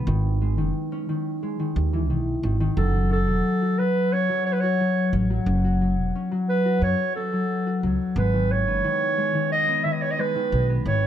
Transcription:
Already playing: harp B3
0.07 upright bass G#1, harp D#3
0.41 harp G#3
0.57 upright bass F#1, harp D#3
0.92 harp C#4
1.09 harp D#3
1.43 harp G#3
1.59 harp D#3
1.76 upright bass D#2
1.93 harp E3
2.09 upright bass B1, harp D#3
2.43 upright bass G#1, harp D#3
2.60 harp D#3
2.77 upright bass F#1, harp F#3, clarinet A4
3.11 harp C#4, clarinet A4
3.27 upright bass E1, harp F#3
3.62 harp F#4
3.78 harp F#3, clarinet B4
4.13 harp C#4, clarinet C#5
4.29 harp F#3
4.45 clarinet C#5
4.53 clarinet B4
4.60 harp F#4, clarinet C#5
4.80 harp F#3
5.13 upright bass A1, harp C#4
5.30 harp F#3
5.46 upright bass F#1
5.64 harp F#4
5.81 harp F#3
5.98 upright bass E1
6.15 harp C#4
6.32 harp F#3
6.49 clarinet B4
6.65 harp F#4
6.82 upright bass F#2, harp F#3, clarinet C#5
7.16 harp C#4, clarinet A4
7.33 harp F#3
7.67 harp F#4
7.83 upright bass C#2, harp F#3
8.16 upright bass G#1, harp G#3, clarinet B4
8.33 harp D#3
8.51 clarinet C#5
8.67 upright bass F#1, harp B3
8.84 harp D#3
9.17 harp G#3
9.34 harp D#3
9.52 clarinet D#5
9.68 harp B3
9.83 harp D#3, clarinet E5
9.91 clarinet D#5
10.02 clarinet C#5
10.11 clarinet D#5
10.18 harp G#3, clarinet B4
10.36 harp D#3
10.52 upright bass B1
10.69 harp B3
10.86 upright bass G#1, harp D#3, clarinet C#5

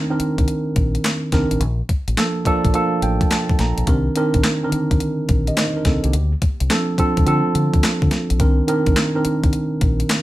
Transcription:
Already playing: tine electric piano D#3 C4 D4 A#4
0.10 tine electric piano D#3 C4 D4 A#4
0.20 muted fingered electric bass stroke, closed hi-hat
0.38 fingered electric bass C2, kick, closed hi-hat
0.48 closed hi-hat
0.76 fingered electric bass A#1, kick, closed hi-hat
0.95 closed hi-hat
1.04 snare, clap, closed hi-hat
1.32 fingered electric bass C2, tine electric piano D#3 C4 D4 A#4, kick, snare, closed hi-hat
1.51 fingered electric bass A1, closed hi-hat
1.60 fingered electric bass A#1, closed hi-hat
1.89 kick, closed hi-hat
2.08 fingered electric bass A1, closed hi-hat
2.17 tine electric piano F3 A#3 D4 A4, snare, clap, closed hi-hat
2.45 tine electric piano F3 A#3 D4 A4 D5, muted fingered electric bass stroke, kick, closed hi-hat
2.65 fingered electric bass A#1, kick, closed hi-hat
2.74 tine electric piano F3 A#3 D4 A4 F5, closed hi-hat
3.02 fingered electric bass A1, tine electric piano G5, closed hi-hat
3.21 tine electric piano A5, kick, closed hi-hat
3.31 tine electric piano A5, snare, clap, closed hi-hat
3.50 kick
3.59 fingered electric bass A#1, tine electric piano A#5, snare, closed hi-hat
3.78 fingered electric bass A#1, closed hi-hat
3.87 fingered electric bass C2, tine electric piano D#3 C4 D4 A#4, kick, closed hi-hat
4.16 tine electric piano D#3 C4 D4 A#4, closed hi-hat
4.34 fingered electric bass A#1, kick, closed hi-hat
4.43 snare, clap, closed hi-hat
4.63 tine electric piano D3 C4 D4 A#4
4.70 tine electric piano D#3, muted fingered electric bass stroke, closed hi-hat
4.91 fingered electric bass C2, kick, closed hi-hat
5.00 closed hi-hat
5.29 fingered electric bass A#1, kick, closed hi-hat
5.47 tine electric piano G4 D#5, closed hi-hat
5.57 tine electric piano D#4 C5, snare, clap, closed hi-hat
5.76 tine electric piano D4 A#4
5.85 fingered electric bass C2, tine electric piano C4 A4, kick, snare, closed hi-hat
6.04 fingered electric bass C2, tine electric piano A#3 G4, closed hi-hat
6.13 fingered electric bass D2, closed hi-hat
6.42 kick, closed hi-hat
6.60 fingered electric bass C2, closed hi-hat
6.70 tine electric piano F3 C4 D4 A4, snare, clap, closed hi-hat
6.98 tine electric piano F3 C4 D4 A4, muted fingered electric bass stroke, kick, closed hi-hat
7.17 fingered electric bass D2, kick, closed hi-hat
7.26 fingered electric bass D3, tine electric piano F3 C4 D4 A4, closed hi-hat
7.55 fingered electric bass D3, closed hi-hat
7.74 fingered electric bass D2, kick, closed hi-hat
7.83 snare, clap, closed hi-hat
8.02 fingered electric bass D3, kick
8.11 snare, closed hi-hat
8.30 fingered electric bass A#1, closed hi-hat
8.40 fingered electric bass C2, tine electric piano D#3 C4 D4 A#4, kick, closed hi-hat
8.68 tine electric piano D#3 C4 D4 A#4, closed hi-hat
8.86 fingered electric bass A#1, kick, closed hi-hat
8.96 snare, clap, closed hi-hat
9.15 tine electric piano D#3 C4 D4 A#4
9.25 muted fingered electric bass stroke, closed hi-hat
9.44 fingered electric bass C2, kick, closed hi-hat
9.53 closed hi-hat
9.81 fingered electric bass A#1, kick, closed hi-hat
10.00 closed hi-hat
10.09 snare, clap, closed hi-hat

